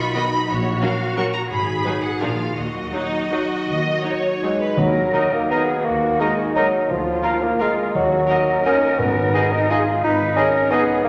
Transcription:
Already playing: B2 F#3 D#4 F4 F#4 B4
0.00 B5
0.15 D#3 B3 D#4 F#4 B4 D#5
0.32 F#4
0.49 A#1 A#2 F#4 C#5
0.64 A#3
0.81 F#3 C#4 F#4 A#4 F5
0.99 F#4
1.16 F#3 C#4 F#4 A#4 C#6
1.33 F#4 A#5
1.50 G#1 G#2 G#4 B5
1.67 D#3
1.85 F#3 D#4 G#4 B4
2.03 F#5
2.21 A#1 A#2 F3 D4 F4 G#4 A#4 F5
2.40 D4 G#4
2.56 D#2 D#3 F#4 D#5
2.74 F#3
2.93 F#3 D#4 F#4
3.13 D#4
3.32 F#3 D#4 F#4
3.50 F#4
3.68 D#2 D#3 D#5
3.85 F#3
4.03 F#3 D#4 F#4 C#5
4.23 D#4
4.42 F#3 G#3 D#4
4.60 F#4 B4
4.77 D#2 D#3 F#3 A#4
4.94 A#3
5.13 D#4 A#4 D#5 A#5
5.31 A#3 F#4
5.49 B3 D#4 G#4 A#4 D#5 A#5
5.68 D#4
5.84 D#2 D#3 A#3 F#4
6.02 A#3
6.20 G#3 D#4 A#4 D#5 A#5
6.38 F#4
6.55 F#3 D#4 A#4 D#5 A#5
6.72 D#4
6.88 D2 D3 F3 F4
7.05 D4
7.23 A#3 F4 A#4 F5 A#5
7.42 A#3
7.59 G#3 F4 A#4 F5 A#5
7.78 A#3
7.93 D#2 D#3 F#3 F#4
8.11 A#3
8.29 D#4 A#4 D#5 F#5
8.65 C#4 D#4 A#4 D#5 F#5
8.98 G#1 G#2 B3
9.15 D#3
9.34 G#3 D#4 G#4 D#5 G#5
9.53 D#4
9.70 D#4 F4 G#4 D#5 G#5
9.88 G#3
10.03 G#1 G#2 D#4 B4
10.21 D#3
10.36 G#3 C#4 D#4 G#4 A#4 D#5 G#5
10.54 D#4
10.70 B3 D#4 G#4 D#5 G#5
10.88 G#3
11.03 G1 G2 A#3 D#4

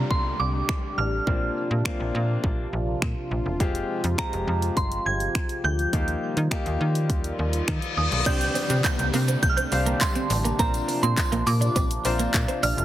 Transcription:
Already playing: C3 D3 G3 C4 D4 F4 G4 A#5, downlifter
0.10 C2 C6, kick
0.40 C2 D6
0.69 finger snap, kick
0.98 A1 F6
1.27 A#1 F3 A#3 C4 D4 F4, kick
1.71 A#2
1.85 A#3 C4 D4 F4, finger snap, kick
2.00 A#1
2.15 A#2
2.44 A#1, kick
2.73 A#1
3.02 A#2, finger snap, kick
3.31 A#1
3.46 E1
3.60 F1 G#3 C4 F4 G4, kick, closed hi-hat
3.75 closed hi-hat
4.04 F2, closed hi-hat
4.18 G#3 C4 F4 G4 A#5, finger snap, kick, closed hi-hat
4.33 F1, closed hi-hat
4.47 F2
4.62 closed hi-hat
4.77 G1 C6, kick, closed hi-hat
4.92 closed hi-hat
5.06 G1 G#6
5.20 closed hi-hat
5.35 finger snap, kick, closed hi-hat
5.49 closed hi-hat
5.64 D2 G6
5.79 closed hi-hat
5.93 D#2 D#3 G3 A#3 D#4 F4 G4, kick, closed hi-hat
6.08 closed hi-hat
6.37 D#3, closed hi-hat
6.51 A#3 D#4 F4 G4, finger snap, kick, closed hi-hat
6.66 D#2, closed hi-hat
6.81 D#3
6.95 closed hi-hat
7.10 D#2, kick, closed hi-hat, reverse cymbal
7.24 closed hi-hat
7.39 D#2
7.53 closed hi-hat
7.68 D#3, finger snap, kick, closed hi-hat
7.82 closed hi-hat
7.97 D#2 D#6
8.12 B1, closed hi-hat
8.26 C2 C3 D3 G3 C4 D4 G4 C5 D5 G6, kick, closed hi-hat, crash, tambourine, downlifter, shaker
8.41 closed hi-hat, tambourine, shaker
8.55 C4, open hi-hat, shaker
8.70 C3, muted clean electric guitar stroke, closed hi-hat, tambourine, shaker
8.84 G6, muted clean electric guitar stroke, kick, clap, closed hi-hat, tambourine, shaker
8.99 C2, closed hi-hat, shaker
9.13 C3 A#3, open hi-hat, tambourine, shaker
9.28 C4, closed hi-hat, tambourine, shaker
9.43 C2 G6, kick, closed hi-hat, tambourine, shaker
9.49 F6
9.57 C4 G6, closed hi-hat, shaker
9.72 C2 C4 D4 G4 C5 F5, muted clean electric guitar stroke, open hi-hat, tambourine, shaker
9.86 A#3, closed hi-hat, shaker
10.01 C6, kick, clap, closed hi-hat, tambourine, shaker
10.15 C4, closed hi-hat, shaker
10.30 A1, muted clean electric guitar stroke, open hi-hat, tambourine, shaker
10.44 A#3, closed hi-hat, tambourine, shaker
10.59 A#1 F3 A#3 C4 D4 F4 A#4 C5 A#5, kick, closed hi-hat, tambourine, shaker
10.74 closed hi-hat, tambourine, shaker
10.88 muted clean electric guitar stroke, open hi-hat, shaker
11.03 A#2 C4 C6, closed hi-hat, shaker
11.17 kick, clap, closed hi-hat, tambourine, shaker
11.32 A#1 A#3, closed hi-hat, shaker
11.46 A#2 D6, muted clean electric guitar stroke, open hi-hat, tambourine, shaker
11.61 D4, closed hi-hat, tambourine, shaker
11.76 A#1 C4, kick, closed hi-hat, tambourine, shaker
11.91 closed hi-hat, shaker
12.05 A#1 C4 D4 F4 A#4 C5, muted clean electric guitar stroke, open hi-hat, tambourine, shaker
12.19 A#3, closed hi-hat, tambourine, shaker
12.34 A#2, muted clean electric guitar stroke, kick, clap, closed hi-hat, tambourine, shaker
12.48 C4, closed hi-hat, shaker
12.63 A#1 D4 F6, open hi-hat, tambourine, shaker
12.77 E1, closed hi-hat, shaker

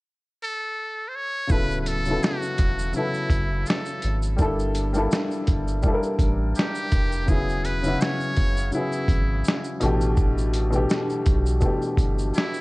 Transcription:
0.43 A4
1.08 C5
1.15 C#5
1.47 D1 C#3 F#3 B3 E4, kick, shaker
1.51 A4 B4
1.71 shaker
1.81 B4
1.86 A4, closed hi-hat, shaker
2.05 C#3 F#3 B3, shaker
2.10 E4 A4
2.22 F#4, snare, shaker
2.42 shaker
2.58 E1, kick, closed hi-hat, shaker
2.79 shaker
2.93 C#3 F#3 B3 E4, shaker
2.98 A4
3.14 shaker
3.30 F#1, kick, closed hi-hat, shaker
3.66 A4, shaker
3.70 snare
3.86 shaker
4.02 G#1, closed hi-hat, shaker
4.22 shaker
4.37 G1 G3 A#3 D4 E4, kick, shaker
4.42 A4
4.59 shaker
4.75 closed hi-hat, shaker
4.93 G3 A#3 D4 E4, shaker
4.98 A4
5.11 snare, shaker
5.31 shaker
5.47 G1, kick, closed hi-hat, shaker
5.68 shaker
5.82 G3 A#3 D4 E4, kick, shaker
5.88 A4
5.94 A#4
6.03 shaker
6.19 A1, kick, closed hi-hat, shaker
6.55 G4, shaker
6.59 snare
6.75 shaker
6.92 F1, kick, closed hi-hat, shaker
7.12 shaker
7.26 E1 C#3 F#3 B3 E4 G#4, kick, shaker
7.31 G#4
7.49 shaker
7.65 B4, closed hi-hat, shaker
7.82 C#3 F#3 B3 E4, shaker
7.87 F#4
8.01 C#5, snare, shaker
8.20 shaker
8.36 F#1, kick, closed hi-hat, shaker
8.57 shaker
8.71 C#3 F#3 B3 E4, shaker
8.76 G#4
8.92 shaker
9.08 G#1, kick, closed hi-hat, shaker
9.44 shaker
9.48 snare
9.64 shaker
9.80 A1 B2 E3 A3 D4, closed hi-hat, shaker
9.85 G4
10.01 shaker
10.17 A1, kick, shaker
10.38 shaker
10.54 closed hi-hat, shaker
10.70 B2 E3 A3 D4, shaker
10.75 G4
10.90 snare, shaker
11.10 shaker
11.26 B1, kick, closed hi-hat, shaker
11.46 shaker
11.60 B2 E3 A3 D4, kick, shaker
11.65 G4
11.82 shaker
11.97 G1, kick, closed hi-hat, shaker
12.18 shaker
12.34 E4, shaker
12.38 snare
12.54 shaker

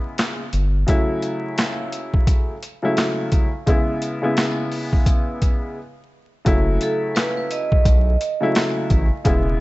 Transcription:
Already playing: C#3 G#3 B3 E4
0.18 snare, clap, closed hi-hat
0.53 G1, closed hi-hat
0.87 C#3 F#3 A3 E4, kick, closed hi-hat
1.22 closed hi-hat
1.58 snare, clap, closed hi-hat
1.92 closed hi-hat
2.14 kick
2.27 kick, closed hi-hat
2.63 closed hi-hat
2.82 C#3 F#3 A3 E4
2.97 snare, clap, closed hi-hat
3.32 kick, closed hi-hat
3.66 C#3 G#3 B3 E4, kick, closed hi-hat
4.02 closed hi-hat
4.22 C#3 G#3 B3 E4
4.37 snare, clap, closed hi-hat
4.72 open hi-hat
4.93 kick
5.06 kick, closed hi-hat
5.42 kick, closed hi-hat
6.45 F#1 C#3 F#3 A3 E4, kick, closed hi-hat
6.81 A4, closed hi-hat
7.15 B4, snare, clap, closed hi-hat
7.37 B4
7.51 D#5, closed hi-hat
7.72 kick
7.85 B1, kick, closed hi-hat
8.21 closed hi-hat
8.41 C#3 F#3 A3 E4
8.55 snare, clap, closed hi-hat
8.90 A1, kick, closed hi-hat
9.24 E1 C#3 G#3 B3 E4, kick, closed hi-hat

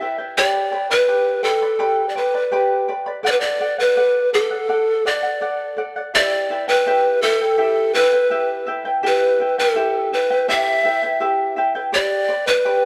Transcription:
Already playing: E5
0.01 E4 B4 E5 G5
0.18 E4 B4 G5
0.37 G4 B4 D5 G5 B5
0.71 B4 D5 G5 B5
0.90 B4 D5 B5
1.08 G4 B4 D5 G5 B5
1.43 A4 B4 D5 G5 B5
1.62 B4 D5 B5
1.79 G4 B4 D5 G5 B5
2.09 D5
2.16 B4 D5 G5 B5
2.34 B4 D5 B5
2.52 G4 B4 D5 G5 B5
2.88 B4 D5 G5 B5
3.06 B4 D5 B5
3.23 A4 D5 F#5
3.32 B4
3.40 D5
3.60 A4 D5 F#5
3.78 B4 D5 F#5
3.96 A4 D5 F#5
4.33 A4 D5 F#5
4.51 D5 F#5
4.69 A4 D5 F#5
5.05 A4 D5 F#5
5.23 D5 F#5
5.41 A4 D5 F#5
5.77 A4 D5 F#5
5.96 D5 F#5
6.14 E4 G4 B4 D5 E5 G5
6.50 E4 B4 E5 G5
6.68 E4 B4 G5
6.86 E4 G4 B4 E5 G5
7.22 E4 A4 B4 E5 G5
7.41 E4 B4 G5
7.58 E4 G4 B4 E5 G5
7.94 E4 B4 E5 G5
8.13 E4 B4 G5
8.30 E4 G4 B4 E5 G5
8.66 E4 B4 E5 G5
8.85 E4 B4 G5
9.03 E4 G4 B4 E5 G5
9.39 E4 B4 E5 G5
9.58 E4 A4 B4 G5
9.75 E4 G4 B4 E5 G5
10.12 E4 B4 E5 G5
10.30 E4 B4 G5
10.48 E4 G4 B4 E5 G5
10.84 E4 B4 E5 G5
11.03 E4 B4 G5
11.20 E4 G4 B4 E5 G5
11.56 E4 B4 E5 G5
11.75 E4 B4 G5
11.92 G4 B4 D5 G5 B5
12.28 B4 D5 G5 B5
12.47 B4 D5 B5
12.65 G4 B4 D5 G5 B5

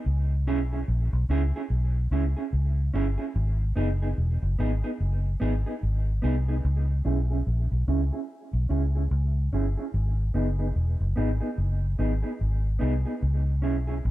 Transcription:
0.06 C#2
0.47 B1 C#4 E4 G#4
0.73 C#4 E4 G#4
0.88 A#1
1.13 B1
1.29 C#2 C#4 E4 G#4
1.56 C#4 E4 G#4
1.70 B1
2.11 C#2 C#4 E4 G#4
2.37 C#4 E4 G#4
2.53 C#2
2.94 G1 C#4 E4 G#4
3.18 C#4 E4 G#4
3.36 G#1
3.76 F#1 B3 D#4 G#4
4.02 B3 D#4 G#4
4.18 E1
4.42 F#1
4.59 G#1 B3 D#4 G#4
4.84 B3 D#4 G#4
5.00 F#1
5.40 G#1 B3 D#4 G#4
5.66 B3 D#4 G#4
5.83 G#1
6.22 C2 B3 D#4 G#4
6.48 B3 D#4 G#4
6.65 C#2
7.05 B1 C#4 E4 G#4
7.31 C#4 E4 G#4
7.47 A#1
7.72 B1
7.88 C#2 C#4 E4 G#4
8.13 C#4 E4 G#4
8.53 B1
8.69 C#2 C#4 E4 G#4
8.95 C#4 E4 G#4
9.11 C#2
9.52 G1 C#4 E4 G#4
9.77 C#4 E4 G#4
9.94 G#1
10.34 F#1 B3 D#4 G#4
10.59 B3 D#4 G#4
10.76 E1
11.00 F#1
11.16 G#1 B3 D#4 G#4
11.40 B3 D#4 G#4
11.58 F#1
11.99 G#1 B3 D#4 G#4
12.23 B3 D#4 G#4
12.41 G#1
12.79 C2 B3 D#4 G#4
13.05 B3 D#4 G#4
13.22 C#2
13.62 B1 C#4 E4 G#4
13.87 C#4 E4 G#4
14.05 A#1

